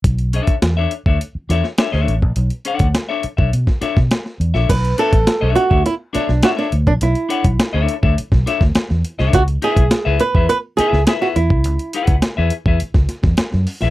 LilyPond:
<<
  \new Staff \with { instrumentName = "Clean electric guitar" } { \time 4/4 \key b \dorian \tempo 4 = 104 r8 <d' a' cis'' e''>16 r8 <d' a' cis'' e''>16 r16 <d' a' cis'' e''>16 r8 <d' a' cis'' e''>16 r16 <d' a' cis'' e''>16 <d' a' cis'' e''>16 r8 | r8 <d' a' cis'' fis''>16 r8 <d' a' cis'' e''>16 r16 <d' a' cis'' e''>16 r8 <d' a' cis'' e''>16 r4 <d' a' cis'' e''>16 | r8 <d' a' cis'' e''>16 r8 <d' a' cis'' e''>16 r16 <d' a' cis'' e''>16 r8 <d' a' cis'' e''>16 r16 <d' a' cis'' e''>16 <d' a' cis'' e''>16 r8 | r8 <d' a' cis'' fis''>16 r8 <d' a' cis'' e''>16 r16 <d' a' cis'' e''>16 r8 <d' a' cis'' e''>16 r4 <d' a' cis'' e''>16 |
r8 <e' gis' b' e''>16 r8 <e' gis' b' e''>16 r16 <e' gis' b' e''>16 r8 <e' gis' b' e''>16 r16 <e' gis' b' e''>16 <e' gis' b' e''>16 r8 | r8 <e' gis' b' fis''>16 r8 <e' gis' b' e''>16 r16 <e' gis' b' e''>16 r4. r16 <e' gis' b' e''>16 | }
  \new Staff \with { instrumentName = "Nylon-string guitar" } { \time 4/4 \key b \dorian r1 | r1 | b'8 a'4 fis'8 e'8 d'8 fis'16 d'8 d'16 | e'2. r4 |
fis'8 gis'4 b'8 b'8 gis'8 gis'16 fis'16 e'8~ | e'2.~ e'8 r8 | }
  \new Staff \with { instrumentName = "Fingered electric bass" } { \clef bass \time 4/4 \key b \dorian b,,8. r16 e,8 r16 d,16 r8 e,16 r8 d,16 a,,16 ais,,16 | b,,16 r8 d,16 r8. b,,16 b,16 r8 b,16 r8 e,16 ais,,16 | b,,8 r16 a,,16 r16 b,,16 r16 d,16 r8. b,,16 r8 d,16 ais,,16 | b,,16 r8 b,,16 r16 d,16 r16 d,16 r16 b,,16 r16 d,16 r16 e,16 r16 c,16 |
cis,8 r16 b,,16 r16 cis,16 r16 e,16 r8. cis,16 r8 e,16 c,16 | cis,16 r8 cis,16 r16 e,16 r16 e,16 r16 cis,16 r16 e,16 r16 fis,16 r16 ais,,16 | }
  \new DrumStaff \with { instrumentName = "Drums" } \drummode { \time 4/4 <hh bd>16 hh16 hh16 <hh bd>16 <hh sn>8 hh16 bd16 hh8 <hh sn>16 sn16 <hh sn>16 sn16 hh16 bd16 | hh16 hh16 hh16 <hh bd>16 <hh sn>8 hh16 bd16 hh16 <bd sn>16 <hh sn>16 <bd sn>16 <hh sn>16 sn16 hh16 sn16 | <cymc hh bd>16 hh16 hh16 <hh bd>16 <hh sn>8 hh16 bd16 hh8 <hh sn>16 sn16 <hh sn>16 sn16 hh16 bd16 | hh16 hh16 hh16 <hh bd>16 <hh sn>8 hh16 bd16 hh16 <bd sn>16 <hh sn>16 <bd sn>16 <hh sn>16 sn16 hh16 sn16 |
<hh bd>16 hh16 hh16 <hh bd>16 <hh sn>8 hh16 bd16 hh8 <hh sn>16 sn16 <hh sn>16 sn16 hh16 bd16 | hh16 hh16 hh16 <hh bd>16 <hh sn>8 hh16 bd16 hh16 <bd sn>16 <hh sn>16 <bd sn>16 <hh sn>16 sn16 hho16 sn16 | }
>>